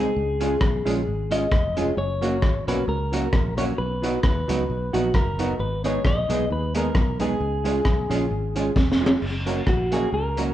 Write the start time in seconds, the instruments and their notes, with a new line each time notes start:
Already playing: hollow-body jazz guitar D#4 G#4, clean electric guitar G#4
0.16 fingered electric bass C#2
0.40 hollow-body jazz guitar G#3 C#4 F4 G#4, upright piano G#3 C#4 F4 G#4, closed hi-hat
0.61 fingered electric bass B1, kick, cross-stick
0.85 fingered electric bass A#1, upright piano G#3 C#4 F4 G#4, hollow-body jazz guitar G#3 C#4 F4 G#4, closed hi-hat
1.07 fingered electric bass G#1, upright piano F4 G#4
1.31 upright piano G#3 C#4 F4 G#4, hollow-body jazz guitar G#3 C#4 F4 G#4, clean electric guitar D#5, closed hi-hat
1.52 fingered electric bass F1, kick, cross-stick
1.77 upright piano G#3 C#4 F4 G#4, hollow-body jazz guitar G#3 C#4 F4 G#4, closed hi-hat
1.97 fingered electric bass F#1, clean electric guitar C#5
2.21 hollow-body jazz guitar F#3 A#3 C#4 F#4, upright piano F#3 A#3 C#4 F#4, closed hi-hat
2.42 fingered electric bass G#1, kick, cross-stick
2.67 fingered electric bass B1, upright piano F#3 A#3 C#4 F#4, hollow-body jazz guitar F#3 A#3 C#4 F#4, clean electric guitar B4, closed hi-hat
2.88 fingered electric bass C#2, upright piano C#4 F#4, clean electric guitar A#4
3.12 upright piano F#3 A#3 C#4 F#4, hollow-body jazz guitar F#3 A#3 C#4 F#4, closed hi-hat
3.33 fingered electric bass A#1, kick, cross-stick
3.57 hollow-body jazz guitar F#3 A#3 C#4 F#4, upright piano F#3 A#3 C#4 F#4, clean electric guitar C#5, closed hi-hat
3.78 fingered electric bass B1, clean electric guitar B4
4.02 upright piano F#3 B3 D#4 F#4, hollow-body jazz guitar F#3 B3 D#4 F#4, closed hi-hat
4.23 fingered electric bass D#2, clean electric guitar B4, kick, cross-stick
4.48 fingered electric bass C#2, upright piano F#3 B3 D#4 F#4, hollow-body jazz guitar F#3 B3 D#4 F#4, closed hi-hat
4.69 fingered electric bass B1, upright piano D#4 F#4
4.93 fingered electric bass A#1, hollow-body jazz guitar F#3 B3 D#4 F#4, upright piano F#3 B3 D#4 F#4, clean electric guitar F#4, closed hi-hat
5.14 fingered electric bass F#1, clean electric guitar A#4, kick, cross-stick
5.39 hollow-body jazz guitar F#3 B3 D#4 F#4, upright piano F#3 B3 D#4 F#4, closed hi-hat
5.59 fingered electric bass G#1, clean electric guitar B4
5.84 upright piano G#3 B3 D#4 G#4, hollow-body jazz guitar G#3 B3 D#4 G#4, clean electric guitar C#5, closed hi-hat
6.04 fingered electric bass A#1, upright piano D#4 G#4, clean electric guitar D#5, kick, cross-stick
6.29 fingered electric bass B1, upright piano G#3 B3 D#4 G#4, hollow-body jazz guitar G#3 B3 D#4 G#4, closed hi-hat
6.50 fingered electric bass D#2, upright piano D#4 G#4, clean electric guitar B4
6.74 upright piano G#3 B3 D#4 G#4, hollow-body jazz guitar G#3 B3 D#4 G#4, clean electric guitar A#4, closed hi-hat
6.95 fingered electric bass B1, kick, cross-stick
7.19 upright piano G#3 B3 D#4 G#4, hollow-body jazz guitar G#3 B3 D#4 G#4, clean electric guitar G#4, closed hi-hat
7.40 fingered electric bass C#2
7.64 upright piano G#3 C#4 F4 G#4, hollow-body jazz guitar G#3 C#4 F4 G#4, closed hi-hat
7.85 fingered electric bass B1, upright piano F4 G#4, kick, cross-stick
8.09 fingered electric bass A#1, upright piano G#3 C#4 F4 G#4, hollow-body jazz guitar G#3 C#4 F4 G#4, closed hi-hat
8.31 fingered electric bass G#1, upright piano F4 G#4
8.55 upright piano G#3 C#4 F4 G#4, hollow-body jazz guitar G#3 C#4 F4 G#4, closed hi-hat
8.76 fingered electric bass F1, kick, snare
8.92 snare
9.01 upright piano G#3 C#4 F4 G#4, hollow-body jazz guitar G#3 C#4 F4 G#4
9.06 snare
9.22 fingered electric bass F#1, crash
9.46 hollow-body jazz guitar F#3 A#3 C#4 F#4, upright piano A#3 C#4 F#4 A#4, closed hi-hat
9.67 fingered electric bass A#1, clean electric guitar F#4, kick, cross-stick
9.91 hollow-body jazz guitar F#3 A#3 C#4 F#4, upright piano A#3 C#4 F#4 A#4, clean electric guitar G#4, closed hi-hat
10.12 fingered electric bass C#2, clean electric guitar A#4
10.36 hollow-body jazz guitar F#3 A#3 C#4 F#4, upright piano A#3 C#4 F#4 A#4, closed hi-hat